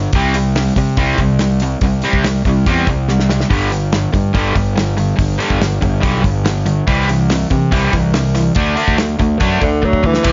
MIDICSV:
0, 0, Header, 1, 5, 480
1, 0, Start_track
1, 0, Tempo, 421348
1, 161, Time_signature, 4, 2, 24, 8
1, 11760, End_track
2, 0, Start_track
2, 0, Title_t, "Tenor saxophone"
2, 0, Program_c, 0, 66
2, 10954, Note_on_c, 0, 50, 83
2, 11219, Note_on_c, 0, 54, 82
2, 11236, Note_off_c, 0, 50, 0
2, 11459, Note_on_c, 0, 52, 99
2, 11476, Note_off_c, 0, 54, 0
2, 11760, Note_off_c, 0, 52, 0
2, 11760, End_track
3, 0, Start_track
3, 0, Title_t, "Overdriven electric guitar"
3, 0, Program_c, 1, 29
3, 0, Note_on_c, 1, 43, 69
3, 0, Note_on_c, 1, 50, 78
3, 138, Note_off_c, 1, 43, 0
3, 144, Note_off_c, 1, 50, 0
3, 168, Note_on_c, 1, 48, 95
3, 176, Note_on_c, 1, 55, 96
3, 182, Note_on_c, 1, 60, 96
3, 384, Note_off_c, 1, 48, 0
3, 389, Note_off_c, 1, 55, 0
3, 396, Note_off_c, 1, 60, 0
3, 398, Note_on_c, 1, 48, 64
3, 403, Note_on_c, 1, 55, 85
3, 614, Note_off_c, 1, 48, 0
3, 617, Note_off_c, 1, 55, 0
3, 641, Note_on_c, 1, 48, 67
3, 641, Note_on_c, 1, 55, 74
3, 856, Note_off_c, 1, 48, 0
3, 856, Note_off_c, 1, 55, 0
3, 885, Note_on_c, 1, 48, 62
3, 886, Note_on_c, 1, 55, 73
3, 1097, Note_off_c, 1, 48, 0
3, 1098, Note_off_c, 1, 55, 0
3, 1109, Note_on_c, 1, 48, 91
3, 1116, Note_on_c, 1, 55, 83
3, 1125, Note_on_c, 1, 60, 94
3, 1339, Note_off_c, 1, 48, 0
3, 1342, Note_off_c, 1, 55, 0
3, 1347, Note_off_c, 1, 60, 0
3, 1366, Note_on_c, 1, 48, 72
3, 1366, Note_on_c, 1, 55, 67
3, 1577, Note_off_c, 1, 55, 0
3, 1578, Note_off_c, 1, 48, 0
3, 1598, Note_on_c, 1, 48, 71
3, 1605, Note_on_c, 1, 55, 66
3, 1813, Note_off_c, 1, 48, 0
3, 1817, Note_off_c, 1, 55, 0
3, 1846, Note_on_c, 1, 48, 63
3, 1850, Note_on_c, 1, 55, 78
3, 2057, Note_off_c, 1, 48, 0
3, 2059, Note_off_c, 1, 55, 0
3, 2087, Note_on_c, 1, 48, 67
3, 2098, Note_on_c, 1, 55, 86
3, 2297, Note_off_c, 1, 48, 0
3, 2303, Note_off_c, 1, 55, 0
3, 2320, Note_on_c, 1, 48, 82
3, 2323, Note_on_c, 1, 55, 89
3, 2335, Note_on_c, 1, 60, 92
3, 2543, Note_off_c, 1, 48, 0
3, 2544, Note_off_c, 1, 55, 0
3, 2550, Note_off_c, 1, 60, 0
3, 2565, Note_on_c, 1, 48, 73
3, 2568, Note_on_c, 1, 55, 62
3, 2776, Note_off_c, 1, 48, 0
3, 2777, Note_off_c, 1, 55, 0
3, 2818, Note_on_c, 1, 48, 69
3, 2824, Note_on_c, 1, 55, 77
3, 3022, Note_off_c, 1, 48, 0
3, 3025, Note_off_c, 1, 55, 0
3, 3041, Note_on_c, 1, 48, 81
3, 3045, Note_on_c, 1, 55, 91
3, 3058, Note_on_c, 1, 60, 94
3, 3263, Note_off_c, 1, 48, 0
3, 3265, Note_off_c, 1, 55, 0
3, 3271, Note_off_c, 1, 60, 0
3, 3291, Note_on_c, 1, 48, 65
3, 3297, Note_on_c, 1, 55, 76
3, 3498, Note_off_c, 1, 48, 0
3, 3501, Note_off_c, 1, 55, 0
3, 3523, Note_on_c, 1, 48, 65
3, 3532, Note_on_c, 1, 55, 70
3, 3734, Note_off_c, 1, 48, 0
3, 3739, Note_off_c, 1, 55, 0
3, 3765, Note_on_c, 1, 48, 67
3, 3769, Note_on_c, 1, 55, 68
3, 3975, Note_off_c, 1, 48, 0
3, 3977, Note_off_c, 1, 55, 0
3, 3982, Note_on_c, 1, 43, 74
3, 3990, Note_on_c, 1, 50, 84
3, 3999, Note_on_c, 1, 55, 81
3, 4213, Note_off_c, 1, 43, 0
3, 4217, Note_off_c, 1, 50, 0
3, 4222, Note_off_c, 1, 55, 0
3, 4235, Note_on_c, 1, 43, 66
3, 4246, Note_on_c, 1, 50, 73
3, 4450, Note_off_c, 1, 43, 0
3, 4456, Note_off_c, 1, 50, 0
3, 4476, Note_on_c, 1, 43, 64
3, 4476, Note_on_c, 1, 50, 82
3, 4688, Note_off_c, 1, 43, 0
3, 4691, Note_off_c, 1, 50, 0
3, 4702, Note_on_c, 1, 43, 76
3, 4708, Note_on_c, 1, 50, 80
3, 4920, Note_off_c, 1, 43, 0
3, 4927, Note_off_c, 1, 50, 0
3, 4933, Note_on_c, 1, 43, 80
3, 4949, Note_on_c, 1, 50, 89
3, 4955, Note_on_c, 1, 55, 100
3, 5169, Note_off_c, 1, 43, 0
3, 5177, Note_off_c, 1, 50, 0
3, 5179, Note_off_c, 1, 55, 0
3, 5185, Note_on_c, 1, 43, 67
3, 5194, Note_on_c, 1, 50, 79
3, 5405, Note_off_c, 1, 43, 0
3, 5407, Note_off_c, 1, 50, 0
3, 5417, Note_on_c, 1, 43, 65
3, 5420, Note_on_c, 1, 50, 70
3, 5641, Note_off_c, 1, 43, 0
3, 5643, Note_off_c, 1, 50, 0
3, 5659, Note_on_c, 1, 43, 64
3, 5665, Note_on_c, 1, 50, 76
3, 5867, Note_off_c, 1, 43, 0
3, 5874, Note_off_c, 1, 50, 0
3, 5881, Note_on_c, 1, 43, 73
3, 5888, Note_on_c, 1, 50, 78
3, 6113, Note_off_c, 1, 43, 0
3, 6116, Note_off_c, 1, 50, 0
3, 6129, Note_on_c, 1, 43, 84
3, 6137, Note_on_c, 1, 50, 96
3, 6147, Note_on_c, 1, 55, 107
3, 6361, Note_off_c, 1, 43, 0
3, 6368, Note_off_c, 1, 50, 0
3, 6375, Note_on_c, 1, 43, 64
3, 6376, Note_off_c, 1, 55, 0
3, 6382, Note_on_c, 1, 50, 75
3, 6601, Note_off_c, 1, 43, 0
3, 6604, Note_off_c, 1, 50, 0
3, 6619, Note_on_c, 1, 43, 67
3, 6624, Note_on_c, 1, 50, 73
3, 6827, Note_off_c, 1, 43, 0
3, 6838, Note_off_c, 1, 50, 0
3, 6840, Note_on_c, 1, 43, 97
3, 6852, Note_on_c, 1, 50, 105
3, 6860, Note_on_c, 1, 55, 99
3, 7083, Note_off_c, 1, 43, 0
3, 7089, Note_off_c, 1, 50, 0
3, 7093, Note_off_c, 1, 55, 0
3, 7097, Note_on_c, 1, 43, 70
3, 7102, Note_on_c, 1, 50, 84
3, 7322, Note_off_c, 1, 43, 0
3, 7324, Note_off_c, 1, 50, 0
3, 7345, Note_on_c, 1, 43, 64
3, 7349, Note_on_c, 1, 50, 73
3, 7566, Note_off_c, 1, 43, 0
3, 7568, Note_off_c, 1, 50, 0
3, 7584, Note_on_c, 1, 43, 62
3, 7590, Note_on_c, 1, 50, 83
3, 7805, Note_off_c, 1, 43, 0
3, 7808, Note_off_c, 1, 50, 0
3, 7823, Note_on_c, 1, 48, 76
3, 7827, Note_on_c, 1, 52, 91
3, 7835, Note_on_c, 1, 55, 89
3, 8055, Note_off_c, 1, 48, 0
3, 8057, Note_off_c, 1, 52, 0
3, 8061, Note_off_c, 1, 55, 0
3, 8076, Note_on_c, 1, 48, 71
3, 8076, Note_on_c, 1, 52, 80
3, 8292, Note_off_c, 1, 48, 0
3, 8292, Note_off_c, 1, 52, 0
3, 8313, Note_on_c, 1, 48, 66
3, 8315, Note_on_c, 1, 52, 70
3, 8531, Note_off_c, 1, 48, 0
3, 8531, Note_off_c, 1, 52, 0
3, 8548, Note_on_c, 1, 48, 74
3, 8556, Note_on_c, 1, 52, 74
3, 8768, Note_off_c, 1, 48, 0
3, 8772, Note_off_c, 1, 52, 0
3, 8785, Note_on_c, 1, 48, 90
3, 8796, Note_on_c, 1, 52, 87
3, 8803, Note_on_c, 1, 55, 105
3, 9014, Note_off_c, 1, 48, 0
3, 9022, Note_off_c, 1, 52, 0
3, 9025, Note_off_c, 1, 55, 0
3, 9028, Note_on_c, 1, 48, 68
3, 9038, Note_on_c, 1, 52, 82
3, 9249, Note_off_c, 1, 48, 0
3, 9253, Note_off_c, 1, 52, 0
3, 9277, Note_on_c, 1, 52, 68
3, 9278, Note_on_c, 1, 48, 74
3, 9493, Note_off_c, 1, 52, 0
3, 9494, Note_off_c, 1, 48, 0
3, 9513, Note_on_c, 1, 48, 62
3, 9517, Note_on_c, 1, 52, 72
3, 9732, Note_off_c, 1, 48, 0
3, 9734, Note_off_c, 1, 52, 0
3, 9753, Note_on_c, 1, 50, 86
3, 9757, Note_on_c, 1, 57, 95
3, 9763, Note_on_c, 1, 62, 105
3, 9972, Note_off_c, 1, 50, 0
3, 9973, Note_off_c, 1, 57, 0
3, 9982, Note_off_c, 1, 62, 0
3, 9985, Note_on_c, 1, 50, 87
3, 9987, Note_on_c, 1, 57, 92
3, 9996, Note_on_c, 1, 62, 101
3, 10214, Note_off_c, 1, 50, 0
3, 10216, Note_off_c, 1, 57, 0
3, 10223, Note_off_c, 1, 62, 0
3, 10227, Note_on_c, 1, 50, 60
3, 10230, Note_on_c, 1, 57, 74
3, 10449, Note_off_c, 1, 50, 0
3, 10450, Note_off_c, 1, 57, 0
3, 10466, Note_on_c, 1, 50, 67
3, 10477, Note_on_c, 1, 57, 80
3, 10689, Note_off_c, 1, 50, 0
3, 10694, Note_off_c, 1, 57, 0
3, 10707, Note_on_c, 1, 50, 94
3, 10714, Note_on_c, 1, 57, 93
3, 10725, Note_on_c, 1, 62, 99
3, 10931, Note_off_c, 1, 50, 0
3, 10936, Note_off_c, 1, 57, 0
3, 10945, Note_on_c, 1, 50, 72
3, 10948, Note_off_c, 1, 62, 0
3, 10950, Note_on_c, 1, 57, 76
3, 11169, Note_off_c, 1, 50, 0
3, 11171, Note_off_c, 1, 57, 0
3, 11189, Note_on_c, 1, 50, 62
3, 11189, Note_on_c, 1, 57, 75
3, 11411, Note_off_c, 1, 50, 0
3, 11411, Note_off_c, 1, 57, 0
3, 11429, Note_on_c, 1, 50, 66
3, 11430, Note_on_c, 1, 57, 82
3, 11651, Note_off_c, 1, 50, 0
3, 11652, Note_off_c, 1, 57, 0
3, 11659, Note_on_c, 1, 48, 82
3, 11666, Note_on_c, 1, 52, 78
3, 11681, Note_on_c, 1, 55, 83
3, 11687, Note_on_c, 1, 60, 102
3, 11700, Note_on_c, 1, 67, 90
3, 11760, Note_off_c, 1, 48, 0
3, 11760, Note_off_c, 1, 52, 0
3, 11760, Note_off_c, 1, 55, 0
3, 11760, Note_off_c, 1, 60, 0
3, 11760, Note_off_c, 1, 67, 0
3, 11760, End_track
4, 0, Start_track
4, 0, Title_t, "Fingered electric bass"
4, 0, Program_c, 2, 33
4, 151, Note_on_c, 2, 36, 98
4, 791, Note_off_c, 2, 36, 0
4, 873, Note_on_c, 2, 48, 83
4, 1088, Note_off_c, 2, 48, 0
4, 1109, Note_on_c, 2, 36, 108
4, 1325, Note_off_c, 2, 36, 0
4, 1344, Note_on_c, 2, 36, 85
4, 1986, Note_off_c, 2, 36, 0
4, 2069, Note_on_c, 2, 36, 102
4, 2284, Note_off_c, 2, 36, 0
4, 2432, Note_on_c, 2, 36, 91
4, 2752, Note_off_c, 2, 36, 0
4, 2795, Note_on_c, 2, 36, 92
4, 3007, Note_off_c, 2, 36, 0
4, 3039, Note_on_c, 2, 40, 94
4, 3249, Note_off_c, 2, 40, 0
4, 3268, Note_on_c, 2, 36, 89
4, 3908, Note_off_c, 2, 36, 0
4, 3989, Note_on_c, 2, 31, 99
4, 4628, Note_off_c, 2, 31, 0
4, 4714, Note_on_c, 2, 43, 78
4, 4926, Note_off_c, 2, 43, 0
4, 4949, Note_on_c, 2, 31, 90
4, 5163, Note_off_c, 2, 31, 0
4, 5189, Note_on_c, 2, 31, 81
4, 5829, Note_off_c, 2, 31, 0
4, 5908, Note_on_c, 2, 31, 102
4, 6123, Note_off_c, 2, 31, 0
4, 6274, Note_on_c, 2, 31, 79
4, 6593, Note_off_c, 2, 31, 0
4, 6637, Note_on_c, 2, 31, 93
4, 6848, Note_off_c, 2, 31, 0
4, 6873, Note_on_c, 2, 35, 93
4, 7086, Note_off_c, 2, 35, 0
4, 7109, Note_on_c, 2, 31, 98
4, 7750, Note_off_c, 2, 31, 0
4, 7837, Note_on_c, 2, 36, 103
4, 8475, Note_off_c, 2, 36, 0
4, 8557, Note_on_c, 2, 48, 76
4, 8769, Note_off_c, 2, 48, 0
4, 8798, Note_on_c, 2, 36, 103
4, 9010, Note_off_c, 2, 36, 0
4, 9032, Note_on_c, 2, 36, 85
4, 9673, Note_off_c, 2, 36, 0
4, 9750, Note_on_c, 2, 38, 111
4, 9966, Note_off_c, 2, 38, 0
4, 10111, Note_on_c, 2, 38, 79
4, 10433, Note_off_c, 2, 38, 0
4, 10478, Note_on_c, 2, 38, 97
4, 10691, Note_off_c, 2, 38, 0
4, 10718, Note_on_c, 2, 42, 82
4, 10932, Note_off_c, 2, 42, 0
4, 10959, Note_on_c, 2, 38, 90
4, 11598, Note_off_c, 2, 38, 0
4, 11679, Note_on_c, 2, 36, 98
4, 11760, Note_off_c, 2, 36, 0
4, 11760, End_track
5, 0, Start_track
5, 0, Title_t, "Drums"
5, 144, Note_on_c, 9, 46, 75
5, 150, Note_on_c, 9, 36, 101
5, 258, Note_off_c, 9, 46, 0
5, 264, Note_off_c, 9, 36, 0
5, 388, Note_on_c, 9, 46, 63
5, 501, Note_off_c, 9, 46, 0
5, 634, Note_on_c, 9, 46, 78
5, 638, Note_on_c, 9, 38, 100
5, 748, Note_off_c, 9, 46, 0
5, 752, Note_off_c, 9, 38, 0
5, 869, Note_on_c, 9, 36, 74
5, 871, Note_on_c, 9, 46, 58
5, 983, Note_off_c, 9, 36, 0
5, 985, Note_off_c, 9, 46, 0
5, 1104, Note_on_c, 9, 46, 70
5, 1109, Note_on_c, 9, 36, 95
5, 1218, Note_off_c, 9, 46, 0
5, 1223, Note_off_c, 9, 36, 0
5, 1343, Note_on_c, 9, 46, 51
5, 1349, Note_on_c, 9, 36, 77
5, 1457, Note_off_c, 9, 46, 0
5, 1463, Note_off_c, 9, 36, 0
5, 1583, Note_on_c, 9, 46, 64
5, 1587, Note_on_c, 9, 38, 102
5, 1697, Note_off_c, 9, 46, 0
5, 1701, Note_off_c, 9, 38, 0
5, 1820, Note_on_c, 9, 46, 61
5, 1934, Note_off_c, 9, 46, 0
5, 2064, Note_on_c, 9, 46, 73
5, 2069, Note_on_c, 9, 36, 96
5, 2178, Note_off_c, 9, 46, 0
5, 2182, Note_off_c, 9, 36, 0
5, 2298, Note_on_c, 9, 46, 60
5, 2412, Note_off_c, 9, 46, 0
5, 2429, Note_on_c, 9, 36, 80
5, 2543, Note_off_c, 9, 36, 0
5, 2554, Note_on_c, 9, 46, 66
5, 2557, Note_on_c, 9, 38, 104
5, 2668, Note_off_c, 9, 46, 0
5, 2671, Note_off_c, 9, 38, 0
5, 2793, Note_on_c, 9, 36, 76
5, 2797, Note_on_c, 9, 46, 46
5, 2907, Note_off_c, 9, 36, 0
5, 2910, Note_off_c, 9, 46, 0
5, 3035, Note_on_c, 9, 36, 94
5, 3038, Note_on_c, 9, 46, 65
5, 3149, Note_off_c, 9, 36, 0
5, 3152, Note_off_c, 9, 46, 0
5, 3269, Note_on_c, 9, 46, 46
5, 3272, Note_on_c, 9, 36, 72
5, 3383, Note_off_c, 9, 46, 0
5, 3386, Note_off_c, 9, 36, 0
5, 3514, Note_on_c, 9, 38, 51
5, 3628, Note_off_c, 9, 38, 0
5, 3641, Note_on_c, 9, 38, 63
5, 3753, Note_off_c, 9, 38, 0
5, 3753, Note_on_c, 9, 38, 82
5, 3867, Note_off_c, 9, 38, 0
5, 3880, Note_on_c, 9, 38, 64
5, 3993, Note_off_c, 9, 38, 0
5, 3993, Note_on_c, 9, 36, 104
5, 3997, Note_on_c, 9, 46, 70
5, 4107, Note_off_c, 9, 36, 0
5, 4111, Note_off_c, 9, 46, 0
5, 4238, Note_on_c, 9, 46, 62
5, 4352, Note_off_c, 9, 46, 0
5, 4471, Note_on_c, 9, 46, 64
5, 4474, Note_on_c, 9, 38, 109
5, 4585, Note_off_c, 9, 46, 0
5, 4588, Note_off_c, 9, 38, 0
5, 4712, Note_on_c, 9, 36, 75
5, 4722, Note_on_c, 9, 46, 50
5, 4826, Note_off_c, 9, 36, 0
5, 4835, Note_off_c, 9, 46, 0
5, 4951, Note_on_c, 9, 36, 93
5, 4955, Note_on_c, 9, 46, 73
5, 5065, Note_off_c, 9, 36, 0
5, 5069, Note_off_c, 9, 46, 0
5, 5190, Note_on_c, 9, 36, 76
5, 5192, Note_on_c, 9, 46, 51
5, 5303, Note_off_c, 9, 36, 0
5, 5306, Note_off_c, 9, 46, 0
5, 5439, Note_on_c, 9, 46, 74
5, 5443, Note_on_c, 9, 38, 110
5, 5553, Note_off_c, 9, 46, 0
5, 5557, Note_off_c, 9, 38, 0
5, 5669, Note_on_c, 9, 46, 52
5, 5783, Note_off_c, 9, 46, 0
5, 5909, Note_on_c, 9, 36, 98
5, 5912, Note_on_c, 9, 46, 69
5, 6023, Note_off_c, 9, 36, 0
5, 6026, Note_off_c, 9, 46, 0
5, 6154, Note_on_c, 9, 46, 60
5, 6268, Note_off_c, 9, 46, 0
5, 6269, Note_on_c, 9, 36, 72
5, 6383, Note_off_c, 9, 36, 0
5, 6394, Note_on_c, 9, 46, 66
5, 6397, Note_on_c, 9, 38, 98
5, 6508, Note_off_c, 9, 46, 0
5, 6511, Note_off_c, 9, 38, 0
5, 6634, Note_on_c, 9, 36, 84
5, 6639, Note_on_c, 9, 46, 44
5, 6748, Note_off_c, 9, 36, 0
5, 6753, Note_off_c, 9, 46, 0
5, 6871, Note_on_c, 9, 46, 65
5, 6873, Note_on_c, 9, 36, 107
5, 6985, Note_off_c, 9, 46, 0
5, 6987, Note_off_c, 9, 36, 0
5, 7111, Note_on_c, 9, 36, 81
5, 7118, Note_on_c, 9, 46, 48
5, 7225, Note_off_c, 9, 36, 0
5, 7232, Note_off_c, 9, 46, 0
5, 7353, Note_on_c, 9, 46, 67
5, 7357, Note_on_c, 9, 38, 103
5, 7467, Note_off_c, 9, 46, 0
5, 7470, Note_off_c, 9, 38, 0
5, 7588, Note_on_c, 9, 46, 56
5, 7702, Note_off_c, 9, 46, 0
5, 7833, Note_on_c, 9, 36, 110
5, 7833, Note_on_c, 9, 46, 75
5, 7946, Note_off_c, 9, 46, 0
5, 7947, Note_off_c, 9, 36, 0
5, 8077, Note_on_c, 9, 46, 56
5, 8191, Note_off_c, 9, 46, 0
5, 8313, Note_on_c, 9, 46, 69
5, 8317, Note_on_c, 9, 38, 99
5, 8427, Note_off_c, 9, 46, 0
5, 8431, Note_off_c, 9, 38, 0
5, 8548, Note_on_c, 9, 46, 49
5, 8554, Note_on_c, 9, 36, 74
5, 8661, Note_off_c, 9, 46, 0
5, 8668, Note_off_c, 9, 36, 0
5, 8796, Note_on_c, 9, 46, 71
5, 8797, Note_on_c, 9, 36, 97
5, 8910, Note_off_c, 9, 46, 0
5, 8911, Note_off_c, 9, 36, 0
5, 9033, Note_on_c, 9, 46, 53
5, 9037, Note_on_c, 9, 36, 71
5, 9147, Note_off_c, 9, 46, 0
5, 9151, Note_off_c, 9, 36, 0
5, 9270, Note_on_c, 9, 46, 68
5, 9274, Note_on_c, 9, 38, 98
5, 9384, Note_off_c, 9, 46, 0
5, 9388, Note_off_c, 9, 38, 0
5, 9511, Note_on_c, 9, 46, 59
5, 9514, Note_on_c, 9, 38, 32
5, 9625, Note_off_c, 9, 46, 0
5, 9628, Note_off_c, 9, 38, 0
5, 9737, Note_on_c, 9, 46, 75
5, 9752, Note_on_c, 9, 36, 109
5, 9851, Note_off_c, 9, 46, 0
5, 9866, Note_off_c, 9, 36, 0
5, 9989, Note_on_c, 9, 46, 61
5, 10103, Note_off_c, 9, 46, 0
5, 10114, Note_on_c, 9, 36, 74
5, 10228, Note_off_c, 9, 36, 0
5, 10231, Note_on_c, 9, 46, 76
5, 10234, Note_on_c, 9, 38, 104
5, 10345, Note_off_c, 9, 46, 0
5, 10348, Note_off_c, 9, 38, 0
5, 10472, Note_on_c, 9, 46, 49
5, 10476, Note_on_c, 9, 36, 75
5, 10586, Note_off_c, 9, 46, 0
5, 10590, Note_off_c, 9, 36, 0
5, 10709, Note_on_c, 9, 46, 64
5, 10717, Note_on_c, 9, 36, 104
5, 10823, Note_off_c, 9, 46, 0
5, 10831, Note_off_c, 9, 36, 0
5, 10952, Note_on_c, 9, 46, 45
5, 10955, Note_on_c, 9, 36, 79
5, 11066, Note_off_c, 9, 46, 0
5, 11069, Note_off_c, 9, 36, 0
5, 11198, Note_on_c, 9, 36, 55
5, 11312, Note_off_c, 9, 36, 0
5, 11316, Note_on_c, 9, 36, 61
5, 11429, Note_off_c, 9, 36, 0
5, 11435, Note_on_c, 9, 36, 76
5, 11549, Note_off_c, 9, 36, 0
5, 11551, Note_on_c, 9, 38, 78
5, 11665, Note_off_c, 9, 38, 0
5, 11669, Note_on_c, 9, 49, 106
5, 11669, Note_on_c, 9, 57, 72
5, 11676, Note_on_c, 9, 36, 105
5, 11760, Note_off_c, 9, 36, 0
5, 11760, Note_off_c, 9, 49, 0
5, 11760, Note_off_c, 9, 57, 0
5, 11760, End_track
0, 0, End_of_file